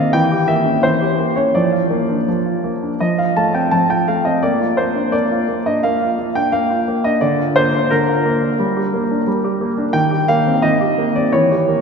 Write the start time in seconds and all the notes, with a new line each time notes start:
Already playing: D#3 C4 F5
0.13 E3 G5
0.32 G4
0.48 A#3 E5
0.65 C#4
0.83 E3 C5
1.01 G4
1.18 A#3
1.36 C#4 C#5
1.55 F3 D5
1.72 F4
1.90 A#3
2.10 D4
2.28 F3
2.46 F4
2.64 A#3
2.83 D4
3.00 F3 D#5
3.18 F4 F5
3.37 A3 A5
3.54 C4 G5
3.71 F3 A5
3.90 F4 G5
4.08 A3 F5
4.25 C4 D#5
4.43 A#3 D5
4.61 F4
4.77 A#3 C5
4.95 D4
5.12 A#3 D5
5.32 F4
5.49 A#3
5.66 D4 D#5
5.83 A#3 F5
6.02 F4
6.19 A#3
6.35 D4 G5
6.52 A#3 F5
6.70 F4
6.88 A#3
7.04 D4 D#5
7.21 D3 D5
7.39 F4
7.56 A#3 C5
7.74 D4
7.91 D3 A#4
8.08 F4
8.26 A#3
8.42 D4
8.59 G3
8.77 G4
8.94 A#3
9.11 D4
9.27 G3
9.44 G4
9.61 A#3
9.78 D4
9.93 D#3 G5
10.11 G4
10.28 A#3 F5
10.47 C4
10.62 D#3 D#5
10.81 G4
10.98 A#3
11.16 C4 D5
11.33 E3 C#5
11.51 G4
11.69 A#3